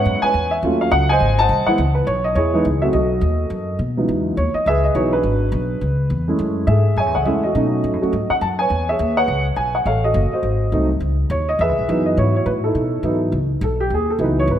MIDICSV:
0, 0, Header, 1, 4, 480
1, 0, Start_track
1, 0, Tempo, 288462
1, 1060, Time_signature, 4, 2, 24, 8
1, 24279, End_track
2, 0, Start_track
2, 0, Title_t, "Upright piano"
2, 0, Program_c, 0, 0
2, 0, Note_on_c, 0, 56, 52
2, 0, Note_on_c, 0, 59, 52
2, 0, Note_on_c, 0, 61, 47
2, 0, Note_on_c, 0, 64, 62
2, 0, Note_on_c, 0, 71, 67
2, 0, Note_on_c, 0, 73, 70
2, 0, Note_on_c, 0, 78, 96
2, 369, Note_on_c, 0, 80, 99
2, 382, Note_off_c, 0, 71, 0
2, 387, Note_off_c, 0, 73, 0
2, 388, Note_off_c, 0, 78, 0
2, 407, Note_on_c, 0, 71, 69
2, 412, Note_on_c, 0, 73, 65
2, 460, Note_off_c, 0, 56, 0
2, 466, Note_off_c, 0, 59, 0
2, 470, Note_off_c, 0, 61, 0
2, 475, Note_off_c, 0, 64, 0
2, 850, Note_on_c, 0, 76, 80
2, 872, Note_off_c, 0, 80, 0
2, 1024, Note_off_c, 0, 71, 0
2, 1026, Note_off_c, 0, 73, 0
2, 1038, Note_off_c, 0, 76, 0
2, 1055, Note_on_c, 0, 54, 60
2, 1065, Note_on_c, 0, 57, 54
2, 1071, Note_on_c, 0, 61, 55
2, 1078, Note_on_c, 0, 65, 67
2, 1350, Note_on_c, 0, 77, 86
2, 1524, Note_on_c, 0, 78, 100
2, 1547, Note_off_c, 0, 77, 0
2, 1766, Note_off_c, 0, 54, 0
2, 1770, Note_off_c, 0, 57, 0
2, 1773, Note_off_c, 0, 61, 0
2, 1777, Note_off_c, 0, 65, 0
2, 1820, Note_on_c, 0, 80, 103
2, 1826, Note_off_c, 0, 78, 0
2, 1859, Note_on_c, 0, 75, 76
2, 1862, Note_on_c, 0, 72, 74
2, 2309, Note_on_c, 0, 81, 115
2, 2313, Note_off_c, 0, 72, 0
2, 2316, Note_off_c, 0, 80, 0
2, 2337, Note_on_c, 0, 78, 71
2, 2338, Note_on_c, 0, 72, 66
2, 2734, Note_off_c, 0, 75, 0
2, 2747, Note_off_c, 0, 78, 0
2, 2752, Note_off_c, 0, 81, 0
2, 2772, Note_on_c, 0, 78, 91
2, 2787, Note_on_c, 0, 52, 67
2, 2791, Note_on_c, 0, 56, 63
2, 2798, Note_on_c, 0, 59, 65
2, 2806, Note_on_c, 0, 64, 75
2, 2947, Note_off_c, 0, 72, 0
2, 2957, Note_off_c, 0, 78, 0
2, 2959, Note_off_c, 0, 52, 0
2, 2961, Note_off_c, 0, 56, 0
2, 2964, Note_off_c, 0, 59, 0
2, 2968, Note_off_c, 0, 64, 0
2, 3240, Note_on_c, 0, 71, 81
2, 3430, Note_off_c, 0, 71, 0
2, 3439, Note_on_c, 0, 73, 94
2, 3712, Note_off_c, 0, 73, 0
2, 3733, Note_on_c, 0, 75, 89
2, 3915, Note_on_c, 0, 73, 89
2, 3936, Note_off_c, 0, 75, 0
2, 3947, Note_on_c, 0, 64, 63
2, 3948, Note_on_c, 0, 68, 67
2, 4220, Note_on_c, 0, 52, 72
2, 4227, Note_on_c, 0, 56, 66
2, 4239, Note_on_c, 0, 59, 64
2, 4243, Note_on_c, 0, 63, 80
2, 4369, Note_off_c, 0, 73, 0
2, 4394, Note_off_c, 0, 52, 0
2, 4397, Note_off_c, 0, 56, 0
2, 4404, Note_off_c, 0, 59, 0
2, 4405, Note_off_c, 0, 63, 0
2, 4690, Note_on_c, 0, 76, 80
2, 4693, Note_on_c, 0, 54, 57
2, 4699, Note_on_c, 0, 57, 55
2, 4712, Note_on_c, 0, 60, 51
2, 4715, Note_on_c, 0, 66, 64
2, 4773, Note_off_c, 0, 76, 0
2, 4832, Note_off_c, 0, 64, 0
2, 4833, Note_off_c, 0, 68, 0
2, 4870, Note_off_c, 0, 54, 0
2, 4873, Note_off_c, 0, 57, 0
2, 4874, Note_on_c, 0, 75, 79
2, 4879, Note_off_c, 0, 66, 0
2, 4880, Note_off_c, 0, 60, 0
2, 4903, Note_on_c, 0, 66, 54
2, 4906, Note_on_c, 0, 69, 57
2, 6254, Note_off_c, 0, 75, 0
2, 6269, Note_off_c, 0, 66, 0
2, 6270, Note_off_c, 0, 69, 0
2, 6612, Note_on_c, 0, 37, 55
2, 6617, Note_on_c, 0, 52, 54
2, 6622, Note_on_c, 0, 54, 51
2, 6626, Note_on_c, 0, 59, 50
2, 6632, Note_on_c, 0, 63, 59
2, 7249, Note_off_c, 0, 37, 0
2, 7252, Note_off_c, 0, 52, 0
2, 7254, Note_off_c, 0, 54, 0
2, 7256, Note_off_c, 0, 59, 0
2, 7259, Note_off_c, 0, 63, 0
2, 7275, Note_on_c, 0, 73, 86
2, 7548, Note_off_c, 0, 73, 0
2, 7559, Note_on_c, 0, 75, 87
2, 7767, Note_off_c, 0, 75, 0
2, 7779, Note_on_c, 0, 76, 96
2, 7806, Note_on_c, 0, 71, 74
2, 7808, Note_on_c, 0, 68, 74
2, 8041, Note_off_c, 0, 76, 0
2, 8052, Note_on_c, 0, 75, 84
2, 8234, Note_off_c, 0, 75, 0
2, 8234, Note_on_c, 0, 52, 58
2, 8236, Note_on_c, 0, 54, 56
2, 8237, Note_on_c, 0, 73, 79
2, 8246, Note_on_c, 0, 59, 56
2, 8253, Note_on_c, 0, 63, 71
2, 8500, Note_off_c, 0, 52, 0
2, 8501, Note_off_c, 0, 54, 0
2, 8506, Note_off_c, 0, 59, 0
2, 8506, Note_off_c, 0, 71, 0
2, 8509, Note_off_c, 0, 63, 0
2, 8509, Note_off_c, 0, 73, 0
2, 8531, Note_on_c, 0, 71, 87
2, 8546, Note_on_c, 0, 62, 51
2, 8553, Note_on_c, 0, 66, 49
2, 8683, Note_off_c, 0, 68, 0
2, 9629, Note_off_c, 0, 62, 0
2, 9632, Note_off_c, 0, 66, 0
2, 10388, Note_off_c, 0, 71, 0
2, 10445, Note_on_c, 0, 56, 55
2, 10451, Note_on_c, 0, 57, 54
2, 10457, Note_on_c, 0, 61, 54
2, 10471, Note_on_c, 0, 64, 64
2, 11087, Note_off_c, 0, 56, 0
2, 11090, Note_off_c, 0, 57, 0
2, 11093, Note_off_c, 0, 61, 0
2, 11099, Note_on_c, 0, 76, 78
2, 11100, Note_off_c, 0, 64, 0
2, 11134, Note_on_c, 0, 69, 55
2, 11135, Note_on_c, 0, 68, 58
2, 11607, Note_on_c, 0, 80, 90
2, 11610, Note_off_c, 0, 76, 0
2, 11639, Note_on_c, 0, 73, 62
2, 11641, Note_on_c, 0, 76, 64
2, 11876, Note_off_c, 0, 80, 0
2, 11896, Note_on_c, 0, 78, 76
2, 12022, Note_on_c, 0, 75, 54
2, 12027, Note_off_c, 0, 69, 0
2, 12028, Note_off_c, 0, 68, 0
2, 12047, Note_off_c, 0, 78, 0
2, 12064, Note_off_c, 0, 76, 0
2, 12081, Note_off_c, 0, 75, 0
2, 12081, Note_on_c, 0, 56, 60
2, 12086, Note_on_c, 0, 57, 53
2, 12089, Note_on_c, 0, 76, 72
2, 12101, Note_on_c, 0, 61, 53
2, 12103, Note_on_c, 0, 64, 60
2, 12345, Note_off_c, 0, 56, 0
2, 12347, Note_off_c, 0, 57, 0
2, 12355, Note_off_c, 0, 61, 0
2, 12356, Note_off_c, 0, 64, 0
2, 12357, Note_off_c, 0, 76, 0
2, 12370, Note_on_c, 0, 75, 77
2, 12405, Note_on_c, 0, 66, 55
2, 12409, Note_on_c, 0, 69, 55
2, 12520, Note_off_c, 0, 73, 0
2, 12552, Note_on_c, 0, 54, 64
2, 12569, Note_on_c, 0, 57, 60
2, 12570, Note_on_c, 0, 61, 58
2, 12581, Note_on_c, 0, 63, 65
2, 13272, Note_off_c, 0, 54, 0
2, 13280, Note_off_c, 0, 57, 0
2, 13281, Note_off_c, 0, 61, 0
2, 13287, Note_off_c, 0, 63, 0
2, 13326, Note_on_c, 0, 54, 54
2, 13327, Note_off_c, 0, 66, 0
2, 13337, Note_on_c, 0, 57, 53
2, 13343, Note_on_c, 0, 61, 56
2, 13352, Note_on_c, 0, 66, 63
2, 13507, Note_off_c, 0, 54, 0
2, 13512, Note_off_c, 0, 57, 0
2, 13516, Note_off_c, 0, 61, 0
2, 13520, Note_off_c, 0, 66, 0
2, 13768, Note_off_c, 0, 69, 0
2, 13813, Note_on_c, 0, 78, 87
2, 13859, Note_off_c, 0, 75, 0
2, 13896, Note_off_c, 0, 78, 0
2, 14003, Note_on_c, 0, 81, 86
2, 14086, Note_off_c, 0, 81, 0
2, 14291, Note_on_c, 0, 80, 86
2, 14321, Note_on_c, 0, 73, 63
2, 14328, Note_on_c, 0, 71, 61
2, 14742, Note_off_c, 0, 80, 0
2, 14795, Note_off_c, 0, 73, 0
2, 14796, Note_on_c, 0, 76, 86
2, 14820, Note_on_c, 0, 73, 58
2, 14821, Note_on_c, 0, 68, 56
2, 15209, Note_off_c, 0, 71, 0
2, 15258, Note_off_c, 0, 73, 0
2, 15263, Note_on_c, 0, 78, 97
2, 15283, Note_off_c, 0, 76, 0
2, 15283, Note_on_c, 0, 73, 67
2, 15288, Note_on_c, 0, 71, 66
2, 15696, Note_off_c, 0, 68, 0
2, 15709, Note_off_c, 0, 78, 0
2, 15916, Note_on_c, 0, 80, 79
2, 16167, Note_off_c, 0, 73, 0
2, 16170, Note_off_c, 0, 71, 0
2, 16192, Note_off_c, 0, 80, 0
2, 16221, Note_on_c, 0, 78, 77
2, 16418, Note_on_c, 0, 77, 82
2, 16421, Note_off_c, 0, 78, 0
2, 16427, Note_on_c, 0, 69, 55
2, 16428, Note_on_c, 0, 73, 55
2, 16684, Note_off_c, 0, 77, 0
2, 16702, Note_off_c, 0, 69, 0
2, 16711, Note_on_c, 0, 75, 86
2, 16725, Note_on_c, 0, 66, 52
2, 16727, Note_on_c, 0, 69, 57
2, 17167, Note_off_c, 0, 75, 0
2, 17178, Note_off_c, 0, 66, 0
2, 17192, Note_on_c, 0, 75, 68
2, 17203, Note_on_c, 0, 66, 50
2, 17204, Note_on_c, 0, 72, 53
2, 17317, Note_off_c, 0, 73, 0
2, 17343, Note_off_c, 0, 69, 0
2, 17839, Note_on_c, 0, 54, 57
2, 17847, Note_on_c, 0, 57, 52
2, 17853, Note_on_c, 0, 60, 52
2, 17860, Note_on_c, 0, 63, 70
2, 18082, Note_off_c, 0, 75, 0
2, 18088, Note_off_c, 0, 66, 0
2, 18088, Note_off_c, 0, 72, 0
2, 18106, Note_off_c, 0, 54, 0
2, 18111, Note_off_c, 0, 57, 0
2, 18113, Note_off_c, 0, 60, 0
2, 18117, Note_off_c, 0, 63, 0
2, 18819, Note_on_c, 0, 73, 85
2, 19114, Note_off_c, 0, 73, 0
2, 19114, Note_on_c, 0, 75, 92
2, 19291, Note_off_c, 0, 75, 0
2, 19318, Note_on_c, 0, 76, 98
2, 19333, Note_on_c, 0, 68, 70
2, 19335, Note_on_c, 0, 71, 72
2, 19770, Note_on_c, 0, 52, 62
2, 19778, Note_on_c, 0, 54, 55
2, 19793, Note_on_c, 0, 59, 58
2, 19795, Note_on_c, 0, 63, 68
2, 20023, Note_off_c, 0, 76, 0
2, 20066, Note_on_c, 0, 75, 80
2, 20211, Note_off_c, 0, 68, 0
2, 20213, Note_off_c, 0, 71, 0
2, 20247, Note_off_c, 0, 75, 0
2, 20271, Note_on_c, 0, 73, 82
2, 20307, Note_on_c, 0, 66, 59
2, 20308, Note_on_c, 0, 64, 62
2, 20485, Note_off_c, 0, 52, 0
2, 20489, Note_off_c, 0, 54, 0
2, 20496, Note_off_c, 0, 59, 0
2, 20498, Note_off_c, 0, 63, 0
2, 20533, Note_off_c, 0, 73, 0
2, 20569, Note_on_c, 0, 73, 78
2, 20730, Note_on_c, 0, 71, 80
2, 20739, Note_off_c, 0, 73, 0
2, 20813, Note_off_c, 0, 71, 0
2, 21031, Note_on_c, 0, 69, 77
2, 21034, Note_off_c, 0, 64, 0
2, 21059, Note_on_c, 0, 64, 52
2, 21065, Note_on_c, 0, 63, 54
2, 21179, Note_off_c, 0, 66, 0
2, 21689, Note_off_c, 0, 63, 0
2, 21689, Note_on_c, 0, 52, 56
2, 21695, Note_on_c, 0, 54, 55
2, 21705, Note_on_c, 0, 59, 52
2, 21714, Note_on_c, 0, 63, 67
2, 21924, Note_off_c, 0, 69, 0
2, 21938, Note_off_c, 0, 64, 0
2, 22176, Note_off_c, 0, 52, 0
2, 22179, Note_off_c, 0, 54, 0
2, 22184, Note_off_c, 0, 59, 0
2, 22188, Note_off_c, 0, 63, 0
2, 22694, Note_on_c, 0, 69, 71
2, 22957, Note_off_c, 0, 69, 0
2, 22970, Note_on_c, 0, 67, 85
2, 23148, Note_off_c, 0, 67, 0
2, 23200, Note_on_c, 0, 68, 76
2, 23450, Note_off_c, 0, 68, 0
2, 23469, Note_on_c, 0, 69, 76
2, 23611, Note_on_c, 0, 52, 65
2, 23620, Note_on_c, 0, 54, 57
2, 23630, Note_on_c, 0, 59, 56
2, 23636, Note_on_c, 0, 63, 74
2, 23637, Note_off_c, 0, 69, 0
2, 23688, Note_on_c, 0, 71, 70
2, 23934, Note_off_c, 0, 71, 0
2, 23953, Note_on_c, 0, 73, 92
2, 24097, Note_off_c, 0, 52, 0
2, 24101, Note_off_c, 0, 54, 0
2, 24106, Note_off_c, 0, 59, 0
2, 24109, Note_off_c, 0, 63, 0
2, 24119, Note_off_c, 0, 73, 0
2, 24145, Note_on_c, 0, 71, 71
2, 24279, Note_off_c, 0, 71, 0
2, 24279, End_track
3, 0, Start_track
3, 0, Title_t, "Upright bass"
3, 0, Program_c, 1, 32
3, 90, Note_on_c, 1, 42, 78
3, 361, Note_off_c, 1, 42, 0
3, 564, Note_on_c, 1, 40, 81
3, 1032, Note_off_c, 1, 40, 0
3, 1041, Note_on_c, 1, 39, 78
3, 1509, Note_off_c, 1, 39, 0
3, 1519, Note_on_c, 1, 37, 87
3, 1990, Note_off_c, 1, 37, 0
3, 2000, Note_on_c, 1, 32, 77
3, 2466, Note_off_c, 1, 32, 0
3, 2476, Note_on_c, 1, 36, 84
3, 2752, Note_off_c, 1, 36, 0
3, 2961, Note_on_c, 1, 37, 81
3, 3433, Note_off_c, 1, 37, 0
3, 3443, Note_on_c, 1, 35, 87
3, 3907, Note_off_c, 1, 35, 0
3, 3917, Note_on_c, 1, 40, 82
3, 4390, Note_off_c, 1, 40, 0
3, 4406, Note_on_c, 1, 37, 84
3, 4864, Note_off_c, 1, 37, 0
3, 4874, Note_on_c, 1, 35, 81
3, 5336, Note_off_c, 1, 35, 0
3, 5346, Note_on_c, 1, 39, 80
3, 5815, Note_off_c, 1, 39, 0
3, 5824, Note_on_c, 1, 42, 82
3, 6295, Note_off_c, 1, 42, 0
3, 6305, Note_on_c, 1, 47, 78
3, 6783, Note_off_c, 1, 47, 0
3, 6796, Note_on_c, 1, 40, 75
3, 7268, Note_off_c, 1, 40, 0
3, 7275, Note_on_c, 1, 39, 81
3, 7548, Note_off_c, 1, 39, 0
3, 7756, Note_on_c, 1, 37, 77
3, 8223, Note_off_c, 1, 37, 0
3, 8233, Note_on_c, 1, 35, 81
3, 8698, Note_off_c, 1, 35, 0
3, 8708, Note_on_c, 1, 32, 75
3, 9172, Note_off_c, 1, 32, 0
3, 9182, Note_on_c, 1, 35, 86
3, 9662, Note_off_c, 1, 35, 0
3, 9672, Note_on_c, 1, 37, 77
3, 10140, Note_off_c, 1, 37, 0
3, 10150, Note_on_c, 1, 40, 80
3, 10618, Note_off_c, 1, 40, 0
3, 10628, Note_on_c, 1, 42, 82
3, 11092, Note_off_c, 1, 42, 0
3, 11102, Note_on_c, 1, 44, 88
3, 11578, Note_off_c, 1, 44, 0
3, 11588, Note_on_c, 1, 42, 76
3, 11751, Note_off_c, 1, 42, 0
3, 11751, Note_on_c, 1, 40, 50
3, 11903, Note_off_c, 1, 40, 0
3, 11913, Note_on_c, 1, 37, 59
3, 12060, Note_off_c, 1, 37, 0
3, 12070, Note_on_c, 1, 40, 71
3, 12547, Note_off_c, 1, 40, 0
3, 12562, Note_on_c, 1, 47, 81
3, 13033, Note_off_c, 1, 47, 0
3, 13042, Note_on_c, 1, 45, 83
3, 13199, Note_off_c, 1, 45, 0
3, 13199, Note_on_c, 1, 42, 49
3, 13354, Note_off_c, 1, 42, 0
3, 13364, Note_on_c, 1, 39, 59
3, 13513, Note_off_c, 1, 39, 0
3, 13523, Note_on_c, 1, 44, 80
3, 13794, Note_off_c, 1, 44, 0
3, 13997, Note_on_c, 1, 42, 75
3, 14471, Note_off_c, 1, 42, 0
3, 14478, Note_on_c, 1, 40, 78
3, 14952, Note_off_c, 1, 40, 0
3, 14962, Note_on_c, 1, 39, 83
3, 15429, Note_off_c, 1, 39, 0
3, 15439, Note_on_c, 1, 37, 76
3, 15901, Note_off_c, 1, 37, 0
3, 15911, Note_on_c, 1, 35, 73
3, 16389, Note_off_c, 1, 35, 0
3, 16398, Note_on_c, 1, 33, 79
3, 16866, Note_off_c, 1, 33, 0
3, 16876, Note_on_c, 1, 30, 86
3, 17152, Note_off_c, 1, 30, 0
3, 17351, Note_on_c, 1, 32, 79
3, 17830, Note_off_c, 1, 32, 0
3, 17839, Note_on_c, 1, 36, 75
3, 18300, Note_off_c, 1, 36, 0
3, 18310, Note_on_c, 1, 37, 74
3, 18790, Note_off_c, 1, 37, 0
3, 18800, Note_on_c, 1, 39, 87
3, 19275, Note_off_c, 1, 39, 0
3, 19283, Note_on_c, 1, 40, 78
3, 19449, Note_off_c, 1, 40, 0
3, 19449, Note_on_c, 1, 37, 53
3, 19600, Note_off_c, 1, 37, 0
3, 19610, Note_on_c, 1, 35, 60
3, 19764, Note_off_c, 1, 35, 0
3, 19781, Note_on_c, 1, 42, 81
3, 20247, Note_off_c, 1, 42, 0
3, 20256, Note_on_c, 1, 44, 82
3, 20724, Note_off_c, 1, 44, 0
3, 20731, Note_on_c, 1, 45, 83
3, 21202, Note_off_c, 1, 45, 0
3, 21213, Note_on_c, 1, 47, 72
3, 21669, Note_off_c, 1, 47, 0
3, 21679, Note_on_c, 1, 44, 76
3, 22156, Note_off_c, 1, 44, 0
3, 22167, Note_on_c, 1, 37, 78
3, 22640, Note_off_c, 1, 37, 0
3, 22651, Note_on_c, 1, 35, 91
3, 23122, Note_off_c, 1, 35, 0
3, 23134, Note_on_c, 1, 39, 72
3, 23595, Note_off_c, 1, 39, 0
3, 23605, Note_on_c, 1, 37, 77
3, 24075, Note_off_c, 1, 37, 0
3, 24085, Note_on_c, 1, 32, 78
3, 24279, Note_off_c, 1, 32, 0
3, 24279, End_track
4, 0, Start_track
4, 0, Title_t, "Muted upright bass strokes"
4, 369, Note_on_c, 9, 29, 38
4, 535, Note_off_c, 9, 29, 0
4, 2772, Note_on_c, 9, 29, 39
4, 2939, Note_off_c, 9, 29, 0
4, 7556, Note_on_c, 9, 29, 34
4, 7722, Note_off_c, 9, 29, 0
4, 13809, Note_on_c, 9, 29, 38
4, 13976, Note_off_c, 9, 29, 0
4, 17168, Note_on_c, 9, 29, 35
4, 17334, Note_off_c, 9, 29, 0
4, 24279, End_track
0, 0, End_of_file